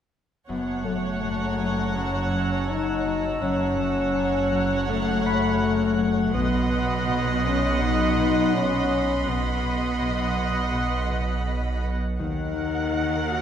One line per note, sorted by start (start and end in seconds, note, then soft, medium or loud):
0.48 3.37 F#1 soft
0.48 3.37 F#1 medium
0.48 0.85 F#2 soft
0.48 3.37 F#2 soft
0.48 0.82 B3 soft
0.48 3.37 C#5 soft
0.48 3.37 F#5 soft
0.48 5.93 A5 soft
0.84 1.22 F#2 soft
0.84 1.94 A3 soft
1.23 1.94 F#2 soft
1.23 5.94 A#5 soft
1.58 2.68 F#3 soft
1.58 5.48 G#5 soft
1.95 2.31 F#2 soft
1.95 2.67 C#4 soft
1.95 4.94 E6 soft
2.32 3.40 F#2 soft
2.69 3.04 F#3 soft
2.69 3.41 D#4 medium
3.05 4.50 F#3 soft
3.41 6.30 F#1 soft
3.41 6.36 F#1 medium
3.41 3.77 F#2 soft
3.41 6.30 F#2 soft
3.41 4.85 C#4 medium
3.41 6.30 C#5 soft
3.41 6.30 F#5 soft
3.78 4.13 F#2 soft
4.15 4.87 F#2 soft
4.51 5.60 F#3 soft
4.88 5.23 F#2 soft
4.88 6.34 A3 medium
4.94 5.93 F6 soft
5.25 6.37 F#2 soft
5.25 9.16 B5 soft
5.61 5.96 F#3 soft
5.98 9.88 F#3 soft
6.34 9.25 B1 soft
6.34 9.25 B1 medium
6.34 9.25 B2 soft
6.34 6.69 B2 soft
6.34 7.41 B3 medium
6.34 9.23 D#5 soft
6.34 9.23 F#5 soft
6.34 11.79 B5 soft
6.34 11.06 C6 soft
6.71 7.06 B2 soft
7.07 7.79 B2 soft
7.44 8.52 B3 soft
7.44 7.80 C#4 medium
7.80 8.16 B2 soft
7.80 8.53 D#4 medium
8.17 9.26 B2 soft
8.53 8.89 B3 soft
8.53 9.27 C#4 medium
8.90 10.36 B3 soft
9.26 12.20 B1 medium
9.26 11.95 B1 soft
9.26 11.95 B2 soft
9.26 9.63 B2 soft
9.26 11.47 B3 soft
9.26 11.95 D#5 soft
9.26 11.95 F#5 soft
9.64 9.99 B2 soft
10.00 10.72 B2 soft
10.37 11.45 B3 soft
10.37 13.42 F#4 soft
10.37 13.42 F#5 soft
10.73 11.09 B2 soft
11.10 12.22 B2 soft
11.46 11.81 B3 soft
11.82 12.22 B3 soft
12.19 13.42 D#2 soft
12.19 13.42 D#2 medium
12.19 13.42 D#3 soft
12.19 12.55 D#3 soft
12.19 13.25 D#4 soft
12.19 13.42 A#4 soft
12.19 13.42 F#5 soft
12.56 12.92 D#3 soft
12.93 13.42 D#3 soft
13.29 13.42 D#4 soft
13.29 13.42 F#4 soft